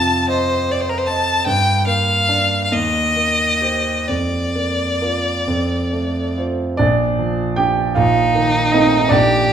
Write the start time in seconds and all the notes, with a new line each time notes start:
Already playing: F2 C3 F4 A5
0.29 C5 D#5
0.69 C5 D5
0.81 C5
0.89 A#4
0.98 C5
1.07 D#5 A5
1.46 G2 G5
1.87 A#3 F5
2.28 D4 D5
2.64 F5
2.72 D#2 D#5
3.16 A#3
3.61 G4 C5
4.08 F2 D5
4.55 A#3
5.01 F4 A#4
5.47 F2
5.93 A3
6.37 F4 C5
6.77 A#1 D4 D5
7.19 F3
7.56 D4 G4 G5
7.95 A#1 D#4 F4 F5
8.35 D#3
8.72 A3 C4 D#4 D#5
9.09 A#1 D4 G4 D5